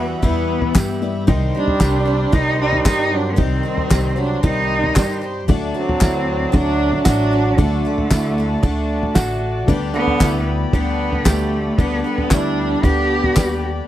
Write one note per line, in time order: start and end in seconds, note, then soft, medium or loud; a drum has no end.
0.00 0.13 E2 loud
0.00 1.24 E2 medium
0.00 0.19 E3 medium
0.00 0.22 E3 medium
0.00 1.24 E3 medium
0.00 0.23 G3 medium
0.00 0.97 G3 medium
0.00 5.45 G3 medium
0.00 0.19 B3 loud
0.00 0.23 B3 medium
0.00 0.98 B3 medium
0.00 0.23 E4 medium
0.00 0.98 E4 medium
0.00 0.22 F#4 medium
0.00 1.24 E5 medium
0.00 1.24 B5 medium
0.22 0.75 E2 medium
0.22 0.66 E2 medium
0.22 0.76 B2 loud
0.22 0.74 E3 medium
0.22 0.98 E3 medium
0.22 0.75 G3 medium
0.22 0.75 B3 loud
0.22 0.98 B3 medium
0.22 0.75 E4 medium
0.22 0.76 E4 medium
0.22 kick loud
0.22 floor tom loud
0.62 floor tom medium
0.75 1.30 G2 loud
0.75 1.01 E3 medium
0.75 1.02 G3 medium
0.75 1.01 B3 medium
0.75 1.01 E4 medium
0.75 1.27 G4 medium
0.75 kick loud
0.75 snare loud
0.75 clap loud
0.75 tambourine loud
1.01 1.27 E3 soft
1.01 1.25 G3 medium
1.01 1.27 G3 medium
1.01 1.28 B3 medium
1.01 1.28 E4 medium
1.01 1.28 B4 medium
1.01 1.28 D5 medium
1.27 3.34 C2 medium
1.27 1.50 C2 loud
1.27 1.54 C3 medium
1.27 3.34 C3 medium
1.27 1.54 D#3 medium
1.27 3.34 D#3 medium
1.27 3.34 G3 medium
1.27 1.54 G3 loud
1.27 3.34 C4 medium
1.27 1.54 C4 loud
1.27 1.79 D#4 loud
1.27 1.53 G4 loud
1.27 5.45 C5 medium
1.27 3.34 C5 medium
1.27 3.34 G5 medium
1.27 5.44 C6 loud
1.27 kick loud
1.27 floor tom loud
1.55 2.35 G3 loud
1.55 1.80 G3 soft
1.55 1.80 C4 medium
1.55 2.36 D4 loud
1.55 1.81 G4 medium
1.68 floor tom medium
1.80 2.24 C2 loud
1.80 2.07 D#3 medium
1.80 2.06 G3 medium
1.80 2.06 C4 medium
1.80 2.32 G4 medium
1.80 2.04 G4 medium
1.80 kick loud
1.80 snare loud
1.80 clap loud
1.80 tambourine loud
2.05 2.31 G3 soft
2.05 2.32 C4 medium
2.05 2.32 G4 medium
2.32 2.76 C2 loud
2.32 2.85 C3 medium
2.32 2.83 D#3 medium
2.32 2.85 G3 medium
2.32 2.60 G3 medium
2.32 2.85 C4 loud
2.32 2.84 D#4 loud
2.32 2.60 D#4 loud
2.32 2.86 G4 loud
2.32 kick loud
2.32 floor tom loud
2.61 2.85 G3 loud
2.61 2.85 D#4 loud
2.72 floor tom medium
2.85 3.40 G2 loud
2.85 3.36 D#3 medium
2.85 3.36 G3 medium
2.85 3.14 G3 medium
2.85 3.36 C4 medium
2.85 3.16 D#4 loud
2.85 3.37 G4 loud
2.85 3.37 G4 medium
2.85 kick loud
2.85 snare loud
2.85 clap loud
2.85 tambourine medium
3.13 3.35 F#3 medium
3.13 3.34 D4 loud
3.33 3.63 C3 medium
3.33 3.40 D3 medium
3.33 3.41 B3 medium
3.37 5.44 C2 medium
3.37 3.60 C2 loud
3.37 5.44 C3 medium
3.37 3.64 D#3 medium
3.37 4.18 D#3 medium
3.37 5.44 G3 medium
3.37 3.64 G3 medium
3.37 5.44 C4 medium
3.37 3.64 C4 loud
3.37 4.20 C4 loud
3.37 5.44 D#4 medium
3.37 3.90 D#4 loud
3.37 3.62 G4 loud
3.37 5.45 C5 medium
3.37 5.45 D#5 medium
3.37 kick loud
3.37 floor tom loud
3.63 3.90 G3 soft
3.63 3.90 C4 soft
3.63 3.90 G4 medium
3.77 floor tom medium
3.90 4.34 C2 loud
3.90 4.16 D#3 medium
3.90 4.17 G3 medium
3.90 4.16 C4 medium
3.90 4.42 G4 medium
3.90 4.15 G4 medium
3.90 kick loud
3.90 snare loud
3.90 clap loud
3.90 tambourine loud
4.16 4.43 F#3 medium
4.16 4.42 G3 soft
4.16 4.43 C4 medium
4.16 4.43 D4 medium
4.16 4.43 G4 medium
4.43 4.87 C2 medium
4.43 4.96 C3 medium
4.43 4.94 D#3 loud
4.43 4.95 G3 loud
4.43 5.19 G3 medium
4.43 4.96 C4 medium
4.43 4.95 D#4 medium
4.43 5.19 D#4 loud
4.43 4.96 G4 medium
4.43 kick loud
4.43 floor tom loud
4.84 floor tom medium
4.95 5.49 G2 loud
4.95 5.22 D#3 medium
4.95 5.22 G3 medium
4.95 5.22 C4 medium
4.95 5.47 G4 medium
4.95 5.20 G4 medium
4.95 kick loud
4.95 snare loud
4.95 clap loud
4.95 tambourine loud
5.22 5.48 G3 soft
5.22 5.49 C4 medium
5.22 5.48 G4 medium
5.48 7.55 D2 medium
5.48 5.70 D2 medium
5.48 5.74 D3 medium
5.48 7.55 D3 medium
5.48 7.54 F#3 medium
5.48 7.54 A3 medium
5.48 5.75 A3 medium
5.48 7.55 D4 medium
5.48 6.00 D4 medium
5.48 5.74 D4 loud
5.48 9.64 F#4 medium
5.48 5.73 F#4 loud
5.48 7.55 A4 medium
5.48 13.85 D5 medium
5.48 7.55 D5 medium
5.48 9.64 A5 medium
5.48 kick loud
5.48 floor tom loud
5.74 6.53 F#3 loud
5.74 5.99 A3 soft
5.74 6.57 C4 loud
5.74 6.00 D4 medium
5.74 6.01 F#4 medium
5.89 floor tom medium
6.00 6.44 D2 loud
6.00 6.52 D3 medium
6.00 6.52 A3 medium
6.00 6.53 D4 medium
6.00 6.52 E4 medium
6.00 6.53 F#4 medium
6.00 kick loud
6.00 snare loud
6.00 clap loud
6.00 tambourine loud
6.52 6.96 D2 loud
6.52 7.04 D3 medium
6.52 7.06 F#3 medium
6.52 7.04 A3 medium
6.52 7.05 D4 loud
6.52 7.06 D4 medium
6.52 7.06 D4 loud
6.52 7.06 F#4 medium
6.52 kick loud
6.52 floor tom loud
6.93 floor tom medium
7.05 7.59 A1 loud
7.05 7.31 D3 medium
7.05 7.60 F#3 medium
7.05 7.32 A3 medium
7.05 7.31 D4 medium
7.05 7.61 D4 loud
7.05 7.57 F#4 medium
7.05 7.30 F#4 medium
7.05 kick loud
7.05 snare loud
7.05 clap loud
7.05 tambourine loud
7.31 7.57 A3 soft
7.31 7.58 D4 medium
7.31 7.58 F#4 soft
7.57 9.64 D2 medium
7.57 7.80 D2 loud
7.57 9.64 D3 medium
7.57 7.84 D3 medium
7.57 8.63 D3 medium
7.57 9.63 F#3 medium
7.57 9.64 A3 medium
7.57 7.85 A3 medium
7.57 8.64 A3 loud
7.57 8.09 D4 medium
7.57 9.64 D4 medium
7.57 7.85 D4 medium
7.57 7.84 F#4 medium
7.57 9.64 A4 medium
7.57 9.64 D5 medium
7.57 kick loud
7.57 floor tom loud
7.85 8.11 A3 soft
7.85 8.11 D4 medium
7.85 8.11 F#4 medium
7.98 floor tom medium
8.10 8.54 D2 loud
8.10 8.37 D3 medium
8.10 8.38 A3 medium
8.10 8.38 D4 medium
8.10 8.62 E4 medium
8.10 8.37 F#4 medium
8.10 kick loud
8.10 snare loud
8.10 clap loud
8.10 tambourine loud
8.38 8.62 A3 medium
8.38 8.62 D4 medium
8.38 8.63 F#4 medium
8.63 9.06 D2 loud
8.63 9.15 D3 medium
8.63 9.38 D3 medium
8.63 9.15 A3 medium
8.63 9.39 A3 medium
8.63 9.14 D4 loud
8.63 9.17 D4 loud
8.63 9.16 F#4 medium
8.63 kick loud
8.63 floor tom loud
9.03 floor tom medium
9.15 9.68 A1 loud
9.15 9.68 D3 medium
9.15 9.68 A3 medium
9.15 9.69 D4 medium
9.15 9.67 F#4 loud
9.15 9.69 F#4 medium
9.15 kick loud
9.15 snare loud
9.15 clap loud
9.15 tambourine loud
9.67 11.74 D2 medium
9.67 9.90 D2 loud
9.67 11.73 D3 medium
9.67 9.94 D3 loud
9.67 11.73 G3 medium
9.67 9.95 G3 loud
9.67 11.73 B3 medium
9.67 9.94 B3 loud
9.67 11.74 D4 medium
9.67 10.19 D4 loud
9.67 13.85 G4 medium
9.67 9.93 G4 loud
9.67 11.74 B4 medium
9.67 11.74 D5 medium
9.67 13.85 B5 loud
9.67 kick loud
9.67 floor tom loud
9.94 10.43 D3 loud
9.94 10.20 G3 medium
9.94 10.43 B3 loud
9.94 10.21 B3 medium
9.94 10.20 G4 medium
10.07 floor tom medium
10.20 10.63 D2 loud
10.20 10.72 D3 medium
10.20 10.73 G3 medium
10.20 10.74 B3 medium
10.20 10.72 E4 medium
10.20 10.75 G4 medium
10.20 kick loud
10.20 snare loud
10.20 clap loud
10.20 tambourine loud
10.73 11.16 D2 loud
10.73 11.23 D3 medium
10.73 11.27 D3 medium
10.73 11.25 G3 loud
10.73 11.26 B3 medium
10.73 11.29 B3 loud
10.73 11.25 D4 loud
10.73 11.27 G4 loud
10.73 kick loud
10.73 floor tom loud
11.12 floor tom medium
11.25 11.69 D2 loud
11.25 11.77 D3 medium
11.25 11.79 G3 medium
11.25 11.80 A3 loud
11.25 11.79 B3 medium
11.25 11.77 G4 loud
11.25 11.79 G4 medium
11.25 kick loud
11.25 snare loud
11.25 clap loud
11.25 tambourine loud
11.77 12.00 D2 loud
11.77 12.03 D3 medium
11.77 12.04 D3 medium
11.77 13.85 D3 medium
11.77 13.32 G3 medium
11.77 12.05 G3 medium
11.77 13.32 B3 medium
11.77 12.04 B3 loud
11.77 12.05 B3 medium
11.77 12.30 D4 loud
11.77 13.33 D4 medium
11.77 12.03 G4 medium
11.77 13.33 B4 medium
11.77 13.33 D5 medium
11.77 kick loud
11.77 floor tom loud
12.04 12.32 D3 medium
12.04 12.31 G3 medium
12.04 12.33 B3 medium
12.04 12.31 B3 soft
12.04 12.30 G4 medium
12.18 floor tom medium
12.31 12.73 D2 loud
12.31 12.82 D3 medium
12.31 12.85 G3 medium
12.31 12.83 G3 medium
12.31 12.84 B3 medium
12.31 12.86 D4 loud
12.31 12.82 E4 medium
12.31 12.84 G4 medium
12.31 kick loud
12.31 snare loud
12.31 clap loud
12.31 tambourine loud
12.83 13.26 D2 medium
12.83 13.34 D3 medium
12.83 13.36 G3 medium
12.83 13.62 B3 medium
12.83 13.36 B3 medium
12.83 13.35 D4 medium
12.83 13.63 G4 loud
12.83 13.37 G4 loud
12.83 kick loud
12.83 floor tom loud
13.24 floor tom medium
13.36 13.79 D#2 loud
13.36 13.88 D3 medium
13.36 13.88 G3 medium
13.36 13.88 B3 soft
13.36 13.88 B3 medium
13.36 13.88 D4 soft
13.36 13.88 G4 medium
13.36 13.88 B4 soft
13.36 13.88 D5 medium
13.36 kick loud
13.36 snare loud
13.36 clap loud
13.36 tambourine loud